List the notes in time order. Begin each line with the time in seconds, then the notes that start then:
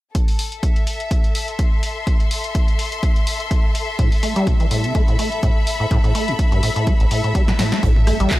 0.15 A4, kick, closed hi-hat
0.28 open hi-hat
0.39 open hi-hat
0.52 closed hi-hat
0.61 E5, kick, closed hi-hat
0.76 closed hi-hat
0.87 open hi-hat
1.00 closed hi-hat
1.11 kick, closed hi-hat
1.24 closed hi-hat
1.35 open hi-hat
1.48 C6, closed hi-hat
1.59 kick, closed hi-hat
1.83 open hi-hat
2.07 kick, closed hi-hat
2.20 closed hi-hat
2.31 open hi-hat
2.44 closed hi-hat
2.55 kick, closed hi-hat
2.68 closed hi-hat
2.79 open hi-hat
2.92 closed hi-hat
3.03 kick, closed hi-hat
3.16 closed hi-hat
3.27 open hi-hat
3.40 closed hi-hat
3.51 kick, closed hi-hat
3.75 open hi-hat
3.99 A2, kick, closed hi-hat
4.12 open hi-hat
4.23 A3, open hi-hat
4.36 G3, closed hi-hat
4.47 A2, kick, closed hi-hat
4.60 E3, closed hi-hat
4.71 A2, open hi-hat
4.84 C3, closed hi-hat
4.94 A3 B5, kick, closed hi-hat
5.08 A2, closed hi-hat
5.19 A3, open hi-hat
5.32 closed hi-hat
5.43 A2, kick, closed hi-hat
5.67 open hi-hat
5.80 A2
5.91 A2, kick, closed hi-hat
6.04 A2, closed hi-hat
6.15 A3, open hi-hat
6.28 A2, closed hi-hat
6.39 kick, closed hi-hat
6.52 G2, closed hi-hat
6.63 A2, open hi-hat
6.76 A2, closed hi-hat
6.87 A3, kick, closed hi-hat
7.00 A1, closed hi-hat
7.11 A2, open hi-hat
7.24 A2, closed hi-hat
7.35 G3, kick, closed hi-hat
7.48 A2, snare, closed hi-hat
7.59 A2, snare, open hi-hat
7.72 A3, snare
7.83 A1 A2, kick, closed hi-hat
7.96 mid tom
8.07 A3, cross-stick, closed hi-hat, open hi-hat
8.20 A1 G3, closed hi-hat
8.31 A2, kick, snare, clap, closed hi-hat